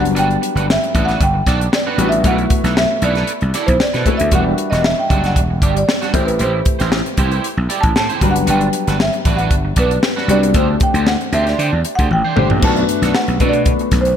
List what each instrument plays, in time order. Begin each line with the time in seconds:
Already playing: grand piano F#3 G3 B3 D4 B4
0.00 slap bass F#1, marimba F#5, muted clean electric guitar stroke
0.05 closed hi-hat
0.14 slap bass G1, clean electric guitar D4 F#4 B4, closed hi-hat
0.19 marimba G5
0.30 muted clean electric guitar stroke, closed hi-hat
0.41 muted clean electric guitar stroke, closed hi-hat
0.55 slap bass G1, clean electric guitar D4 F#4 B4, closed hi-hat
0.68 marimba E5, muted clean electric guitar stroke, snare
0.83 muted clean electric guitar stroke, closed hi-hat
0.95 slap bass A1, clean electric guitar D4 F#4 B4, kick, closed hi-hat
1.05 clean electric guitar F#4 B4, marimba F#5, closed hi-hat
1.09 clean electric guitar D4, snare
1.20 slap bass G1, marimba G5, kick, closed hi-hat
1.34 muted clean electric guitar stroke
1.46 slap bass B1, clean electric guitar D4 F#4 D5, kick, snare, closed hi-hat
1.61 muted clean electric guitar stroke, closed hi-hat
1.72 marimba D5, muted clean electric guitar stroke, snare
1.86 clean electric guitar D4 F#4 B4
1.98 slap bass A1, grand piano G3 B3 D4 F#4 B4, clean electric guitar D4 F#4 B4, closed hi-hat
2.09 marimba E5, muted clean electric guitar stroke, closed hi-hat
2.24 slap bass B1, grand piano A3 B3 E4 F#4 B4, clean electric guitar E4 A4 B4, marimba F#5, kick, closed hi-hat
2.38 muted clean electric guitar stroke, closed hi-hat
2.50 muted clean electric guitar stroke, kick, closed hi-hat
2.64 slap bass B1, clean electric guitar E4 A4 B4, snare, closed hi-hat
2.77 marimba E5, muted clean electric guitar stroke, snare
2.91 muted clean electric guitar stroke
3.02 slap bass B1, clean electric guitar E4 A4 B4, marimba D5, closed hi-hat
3.15 clean electric guitar E4 A4 B4, snare, closed hi-hat
3.27 closed hi-hat
3.41 slap bass C2, muted clean electric guitar stroke, closed hi-hat
3.54 clean electric guitar E4 A4 D5, snare, closed hi-hat
3.66 slap bass B1, marimba C5, muted clean electric guitar stroke, kick, closed hi-hat
3.80 marimba D5, muted clean electric guitar stroke, snare
3.94 slap bass B2, clean electric guitar E4 A4 B4, snare, closed hi-hat
4.05 grand piano A3 B3 E4 F#4 A4, clean electric guitar E4 A4 B4, kick, closed hi-hat
4.17 slap bass D2, marimba E5, muted clean electric guitar stroke, closed hi-hat
4.31 slap bass E1, clean electric guitar G3 D4 F#4, grand piano G3 D4 E4 F#4 A#4, marimba F#5, kick, closed hi-hat
4.40 grand piano B4
4.45 muted clean electric guitar stroke
4.58 muted clean electric guitar stroke, closed hi-hat
4.70 slap bass E1, clean electric guitar G3 D4 F#4, marimba D#5, snare, closed hi-hat
4.84 marimba E5, muted clean electric guitar stroke, snare
4.98 marimba G5, muted clean electric guitar stroke
5.09 slap bass F#1, clean electric guitar G3 D4 F#4, kick, closed hi-hat
5.24 clean electric guitar G3 D4 F#4, marimba F#5, snare, closed hi-hat
5.36 slap bass E1, kick, closed hi-hat
5.50 muted clean electric guitar stroke
5.62 slap bass G1, clean electric guitar G3 D4 G4, kick, closed hi-hat
5.76 marimba D5, muted clean electric guitar stroke, closed hi-hat
5.88 muted clean electric guitar stroke, snare
6.01 clean electric guitar G3 D4 F#4, snare, closed hi-hat
6.14 slap bass A1, grand piano A3 C4 E4 G4 C5, clean electric guitar E4 G4 C5, kick, closed hi-hat
6.26 marimba B4, muted clean electric guitar stroke, closed hi-hat
6.39 slap bass A1, clean electric guitar E4 G4 C5, marimba C5, closed hi-hat
6.53 muted clean electric guitar stroke
6.65 muted clean electric guitar stroke, kick, closed hi-hat
6.79 slap bass A1, clean electric guitar E4 G4 C5, snare, closed hi-hat
6.92 muted clean electric guitar stroke, snare
7.06 muted clean electric guitar stroke, closed hi-hat
7.17 slap bass C2, clean electric guitar E4 G4 C5, kick, closed hi-hat
7.31 clean electric guitar E4 G4 C5, closed hi-hat
7.44 closed hi-hat
7.57 slap bass B1, muted clean electric guitar stroke
7.69 clean electric guitar E4 G4 D5, closed hi-hat
7.81 slap bass A1, marimba A5, muted clean electric guitar stroke, kick, closed hi-hat
7.95 slap bass A2, marimba A5, muted clean electric guitar stroke, snare
8.09 clean electric guitar E4 G4 C5, closed hi-hat
8.21 slap bass G1, grand piano F#3 G3 B3 D4 B4, clean electric guitar D4 F#4 B4, kick, closed hi-hat
8.31 marimba F#5
8.35 slap bass F#1, muted clean electric guitar stroke, closed hi-hat
8.47 slap bass G1, clean electric guitar D4 F#4 B4, marimba G5, closed hi-hat
8.61 muted clean electric guitar stroke, closed hi-hat
8.73 muted clean electric guitar stroke, closed hi-hat
8.87 slap bass G1, clean electric guitar D4 F#4 B4, snare, closed hi-hat
8.99 marimba E5, muted clean electric guitar stroke, snare
9.13 muted clean electric guitar stroke, closed hi-hat
9.25 slap bass A1, clean electric guitar D4 F#4 B4, kick, closed hi-hat
9.37 clean electric guitar D4 F#4 B4, marimba F#5, closed hi-hat
9.50 slap bass G1, kick, closed hi-hat
9.65 muted clean electric guitar stroke
9.76 slap bass B1, clean electric guitar D4 F#4 D5, marimba B4, kick, closed hi-hat
9.91 muted clean electric guitar stroke, closed hi-hat
10.03 muted clean electric guitar stroke, snare
10.16 clean electric guitar D4 F#4 B4, snare
10.28 slap bass C2, grand piano G3 B3 D4 F#4 B4, clean electric guitar D4 F#4 B4, marimba D5, closed hi-hat
10.43 muted clean electric guitar stroke, closed hi-hat
10.54 slap bass D2, grand piano A3 C4 D4 G4 C5, clean electric guitar D4 G4 C5, kick, closed hi-hat
10.69 muted clean electric guitar stroke
10.80 marimba G5, muted clean electric guitar stroke, kick, closed hi-hat
10.94 slap bass D2, clean electric guitar D4 G4 C5, closed hi-hat
11.07 marimba F#5, muted clean electric guitar stroke, snare
11.21 muted clean electric guitar stroke, closed hi-hat
11.32 slap bass D2, clean electric guitar D4 G4 C5, marimba E5, closed hi-hat
11.46 clean electric guitar D4 G4 C5, marimba D5, snare, closed hi-hat
11.58 slap bass D3, clean electric guitar D4 G4 C5, closed hi-hat
11.73 slap bass E2, muted clean electric guitar stroke
11.85 muted clean electric guitar stroke, closed hi-hat
11.95 slap bass D2, clean electric guitar G4 C5, marimba F#5, kick, closed hi-hat
12.00 clean electric guitar D4
12.10 slap bass A1, marimba G5, muted clean electric guitar stroke, high tom
12.24 clean electric guitar D4 G4 C5
12.35 slap bass G1, grand piano A3 C4 D4 G4 C5, clean electric guitar D4 G4 C5, mid tom
12.50 slap bass A1, muted clean electric guitar stroke, floor tom
12.62 slap bass B1, grand piano A3 B3 D4 F#4 B4, clean electric guitar D4 F#4 A4, marimba A5, kick, crash
12.76 grand piano A3 B3 D4 F#4 B4, muted clean electric guitar stroke, closed hi-hat
12.89 muted clean electric guitar stroke, closed hi-hat
13.02 slap bass B1, clean electric guitar D4 F#4 A4, snare, closed hi-hat
13.15 marimba F#5, snare
13.28 slap bass B1, muted clean electric guitar stroke, closed hi-hat
13.40 slap bass B2, grand piano A3 B3 D4 F#4 B4, clean electric guitar D4 F#4 A4, kick, closed hi-hat
13.49 marimba D5
13.53 muted clean electric guitar stroke, closed hi-hat
13.66 muted clean electric guitar stroke, kick, closed hi-hat
13.79 muted clean electric guitar stroke, closed hi-hat
13.91 slap bass B1, kick, snare, closed hi-hat
14.01 marimba C5
14.05 muted clean electric guitar stroke, closed hi-hat